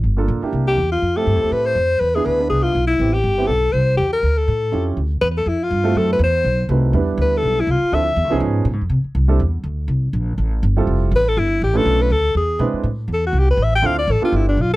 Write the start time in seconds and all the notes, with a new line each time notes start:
0.04 G1
0.17 A#3 D4 F4 A4
0.28 A#1
0.42 A#3 D4 E4 G4, muted upright bass stroke
0.53 C2
0.67 G4
0.77 E2
0.92 F4
1.02 F2
1.16 A3 C4 E4 G4 A4
1.27 G2
1.35 F2
1.42 A3 C4 E4 G4
1.51 A2 B4
1.66 C5
1.75 F2
2.00 E2 B4
2.15 B3 D4 E4 G#4
2.25 D2 B4
2.39 B3 D4 E4 B4
2.50 C2 G#4
2.63 F4
2.75 B1
2.87 E4
2.99 A1 B3 C4 E4 G4
3.13 G4
3.24 G1
3.38 B3 C4 E4 G4
3.47 B1 A4
3.72 C2 C5
3.97 E2 G4
4.13 A#4
4.23 D2
4.38 A4
4.48 A2
4.72 F2 C#4 E4 F4 G4
4.97 D2
5.21 E2 B4
5.37 A4
5.46 F2 E4
5.63 F4
5.71 G2
5.84 A3 C4 E4 F#4 A4
5.95 F#2 A4
6.12 B4
6.19 E2
6.24 C5
6.44 B1
6.69 C2 A3 C4 D#4 F#4 B4
6.93 E2 G3 B3 D4 E4 B4
7.18 D2 B4
7.37 A4
7.43 B1
7.60 E4
7.67 C2 F4
7.82 muted upright bass stroke
7.92 D2 F3 C4 D4 E4 A4 E5
8.16 E2
8.24 D2
8.30 C2 F3 B3 C#4 D#4 G#4
8.40 G#2
8.65 A#2
8.73 G#2
8.90 C3
9.04 muted upright bass stroke
9.15 C2
9.28 G3 C4 D4 E4 A4
9.40 E2
9.64 D2
9.88 C2
10.13 A#1
10.38 A1
10.63 G1
10.77 G3 C4 E4 F4 A4
10.87 F1
11.11 A1
11.16 B4
11.28 A4
11.37 G1 E4
11.62 A1 G4
11.74 A3 C#4 D4 F4 A4 B4
11.86 B1
12.02 B4
12.10 D2 A4
12.35 E2 G#4
12.59 B2 G#3 C4 D4 E4 B4
12.73 muted upright bass stroke
12.83 A2
13.08 E2
13.13 A4
13.27 F#4
13.33 C2
13.39 G4
13.51 B4
13.57 A1
13.63 E5
13.75 G5
13.82 D2 C4 D4 E4 F4 A4 F5
13.98 D5
14.07 A1
14.12 A4
14.22 B3 D4 F4 G4 A4
14.32 G1 E4
14.49 D4
14.57 B1
14.61 F4